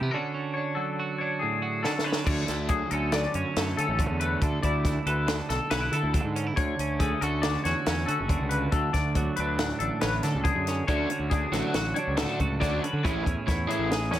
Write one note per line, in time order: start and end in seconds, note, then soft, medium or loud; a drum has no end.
0.00 0.09 C3 medium
0.00 0.11 E3 medium
0.00 0.12 B3 soft
0.00 0.11 G4 medium
0.11 1.83 D3 medium
0.11 0.33 C#4 medium
0.11 0.56 D4 medium
0.11 0.54 A4 medium
0.16 0.98 F#4 medium
0.34 1.83 C#4 medium
0.54 1.20 D4 soft
0.54 0.76 C#5 medium
0.75 2.24 F#3 soft
0.75 1.18 A4 medium
0.99 1.61 F#4 soft
1.18 1.84 D4 medium
1.18 1.40 C#5 medium
1.39 1.84 A2 medium
1.39 1.83 G#4 medium
1.62 1.84 F#4 soft
1.83 2.24 D3 medium
1.83 2.05 C#4 soft
1.83 2.25 D4 soft
1.83 4.43 F#4 medium
1.83 2.04 A4 medium
1.83 snare soft
1.99 snare medium
2.04 2.24 C#4 soft
2.04 2.27 B4 medium
2.12 snare medium
2.25 2.43 D2 medium
2.25 3.12 D3 medium
2.25 2.70 C#5 medium
2.25 kick loud
2.25 crash medium
2.48 2.82 D2 medium
2.48 3.57 A3 medium
2.48 snare soft
2.48 closed hi-hat medium
2.69 4.39 F#3 medium
2.69 2.91 G#4 medium
2.69 kick loud
2.69 closed hi-hat medium
2.91 3.25 D2 medium
2.91 3.34 C#4 medium
2.91 3.12 A4 medium
2.91 closed hi-hat medium
3.12 3.99 D3 medium
3.12 3.35 D5 medium
3.12 snare loud
3.12 closed hi-hat medium
3.34 3.43 F#2 medium
3.34 3.78 C#4 medium
3.34 3.77 C#5 medium
3.34 closed hi-hat medium
3.56 3.73 F#2 medium
3.56 4.21 A3 medium
3.56 snare loud
3.56 closed hi-hat medium
3.77 3.86 D3 medium
3.77 4.43 C#4 medium
3.77 4.19 A4 medium
3.77 closed hi-hat medium
3.88 4.05 A1 medium
3.99 4.40 D3 medium
3.99 kick medium
3.99 closed hi-hat medium
4.09 4.35 E2 medium
4.20 6.99 A3 medium
4.20 4.41 B4 medium
4.20 closed hi-hat medium
4.41 4.59 D2 medium
4.41 5.26 D3 medium
4.41 4.62 A4 medium
4.41 kick loud
4.41 closed hi-hat medium
4.63 4.97 D2 medium
4.63 5.71 E4 medium
4.63 5.06 D5 medium
4.63 kick medium
4.63 closed hi-hat medium
4.85 kick loud
4.85 snare soft
4.85 closed hi-hat medium
5.06 5.40 D2 medium
5.06 5.49 A4 medium
5.06 5.49 B4 medium
5.06 closed hi-hat medium
5.27 6.12 D3 medium
5.27 snare loud
5.27 closed hi-hat medium
5.49 5.58 B1 medium
5.49 5.71 A4 medium
5.49 5.93 A4 medium
5.49 snare soft
5.49 closed hi-hat medium
5.70 5.88 B1 medium
5.70 5.81 C#4 medium
5.70 5.92 B4 medium
5.70 snare loud
5.70 closed hi-hat medium
5.81 6.35 E4 soft
5.91 6.00 D3 medium
5.91 6.14 A4 medium
5.91 7.23 A4 medium
5.91 closed hi-hat medium
6.03 6.20 D2 medium
6.14 6.54 D3 medium
6.14 kick medium
6.14 closed hi-hat medium
6.24 6.50 G#2 medium
6.36 6.47 C#4 medium
6.36 closed hi-hat medium
6.47 6.57 E4 soft
6.56 6.74 D2 medium
6.56 7.43 D3 medium
6.56 7.00 C#5 medium
6.56 kick loud
6.56 closed hi-hat medium
6.79 7.13 D2 medium
6.79 7.87 C#4 medium
6.79 closed hi-hat medium
6.99 8.94 A3 medium
6.99 7.21 G#4 medium
6.99 kick loud
6.99 closed hi-hat medium
7.21 7.55 D2 medium
7.21 7.66 F#4 medium
7.21 7.43 A4 medium
7.21 closed hi-hat medium
7.42 8.28 D3 medium
7.42 7.63 D5 medium
7.42 snare loud
7.42 closed hi-hat medium
7.64 7.73 E2 medium
7.64 8.08 F#4 medium
7.64 8.07 C#5 medium
7.64 snare soft
7.64 closed hi-hat medium
7.86 8.04 E2 loud
7.86 8.76 C#4 medium
7.86 snare loud
7.86 closed hi-hat medium
8.06 8.16 D3 medium
8.06 10.88 F#4 medium
8.06 8.50 A4 medium
8.06 closed hi-hat medium
8.20 8.36 F#1 medium
8.29 8.70 D3 medium
8.29 kick medium
8.29 closed hi-hat medium
8.41 8.66 C#2 medium
8.49 8.71 B4 medium
8.49 closed hi-hat medium
8.72 8.89 D2 medium
8.72 10.42 D3 medium
8.72 8.94 A4 medium
8.72 kick loud
8.72 closed hi-hat medium
8.93 9.28 D2 medium
8.93 9.36 D5 medium
8.93 kick medium
8.93 snare soft
8.93 closed hi-hat medium
9.15 10.86 F#3 medium
9.15 kick loud
9.15 closed hi-hat medium
9.36 9.72 D2 medium
9.36 9.79 D4 medium
9.36 9.78 B4 medium
9.36 closed hi-hat medium
9.58 10.45 A2 medium
9.58 snare loud
9.58 closed hi-hat medium
9.79 9.89 A1 medium
9.79 10.22 D4 medium
9.79 10.01 A4 medium
9.79 closed hi-hat medium
10.01 10.19 A1 medium
10.01 10.67 C#4 medium
10.01 10.23 B4 medium
10.01 snare loud
10.01 closed hi-hat medium
10.23 10.32 D3 medium
10.23 10.85 D4 medium
10.23 10.43 A4 medium
10.23 snare soft
10.23 closed hi-hat medium
10.34 10.51 C#2 medium
10.44 10.85 D3 medium
10.44 10.87 G#4 medium
10.44 kick medium
10.44 closed hi-hat medium
10.55 10.81 F#2 medium
10.67 10.86 C#4 medium
10.67 snare soft
10.67 closed hi-hat medium
10.87 11.05 D2 medium
10.87 12.59 D3 medium
10.87 11.10 D3 medium
10.87 11.10 A3 medium
10.87 11.11 C#4 medium
10.87 11.09 D4 medium
10.87 11.32 D4 soft
10.87 11.09 F#4 medium
10.87 11.74 F#4 medium
10.87 11.31 C#5 medium
10.87 kick medium
10.87 closed hi-hat medium
11.10 12.60 C#4 soft
11.10 muted overdriven electric guitar stroke soft
11.10 closed hi-hat medium
11.19 11.45 D2 medium
11.30 11.97 D4 medium
11.30 11.52 G#4 medium
11.30 muted overdriven electric guitar stroke soft
11.30 kick loud
11.30 closed hi-hat medium
11.51 11.60 A1 medium
11.51 11.74 D3 medium
11.51 13.01 F#3 medium
11.51 11.74 A3 medium
11.51 11.75 D4 medium
11.51 11.95 F#4 medium
11.51 11.74 F#4 medium
11.51 snare soft
11.51 closed hi-hat medium
11.74 11.91 A1 medium
11.74 12.39 F#4 soft
11.74 muted overdriven electric guitar stroke soft
11.74 snare loud
11.74 closed hi-hat medium
11.94 12.16 C#5 medium
11.94 muted overdriven electric guitar stroke soft
11.94 closed hi-hat medium
11.98 12.60 D4 medium
12.07 12.24 C#2 medium
12.16 12.62 A2 medium
12.16 12.39 D3 medium
12.16 12.39 A3 medium
12.16 12.40 D4 medium
12.16 12.39 F#4 medium
12.16 12.60 A4 medium
12.16 snare loud
12.16 closed hi-hat medium
12.39 12.62 C#2 medium
12.39 12.61 F#4 medium
12.39 muted overdriven electric guitar stroke soft
12.39 kick medium
12.39 closed hi-hat medium
12.60 12.78 D2 medium
12.60 13.01 D3 medium
12.60 12.82 D3 medium
12.60 12.83 A3 medium
12.60 12.82 C#4 medium
12.60 13.02 D4 medium
12.60 12.83 D4 medium
12.60 13.05 F#4 medium
12.60 12.83 F#4 medium
12.60 12.82 D5 medium
12.60 kick medium
12.60 snare soft
12.60 closed hi-hat medium
12.82 13.02 C#4 soft
12.82 13.03 B4 medium
12.82 muted overdriven electric guitar stroke soft
12.82 closed hi-hat medium
12.93 13.01 D3 medium
13.03 13.22 A1 medium
13.03 14.20 A2 medium
13.03 13.26 E3 medium
13.03 13.26 A3 medium
13.03 13.26 C#4 medium
13.03 13.48 E4 medium
13.03 13.25 E4 medium
13.03 13.90 G#4 medium
13.03 13.46 C#5 medium
13.03 kick loud
13.03 closed hi-hat medium
13.26 13.34 E2 medium
13.26 14.11 C#4 medium
13.26 muted overdriven electric guitar stroke soft
13.26 kick medium
13.26 closed hi-hat medium
13.47 13.65 E2 medium
13.47 14.11 E4 medium
13.47 13.69 C#5 medium
13.47 muted overdriven electric guitar stroke soft
13.47 kick medium
13.47 snare soft
13.47 closed hi-hat medium
13.67 14.20 E3 medium
13.67 13.89 E3 medium
13.67 13.89 A3 medium
13.67 13.90 C#4 medium
13.67 13.90 E4 medium
13.67 14.11 G#4 medium
13.67 closed hi-hat medium
13.78 14.11 A1 medium
13.90 14.20 G#4 medium
13.90 muted overdriven electric guitar stroke soft
13.90 snare medium
13.90 closed hi-hat medium
14.11 14.20 E2 medium
14.11 14.20 C#4 medium
14.11 14.20 C#5 medium
14.11 muted overdriven electric guitar stroke soft
14.11 snare soft
14.11 closed hi-hat medium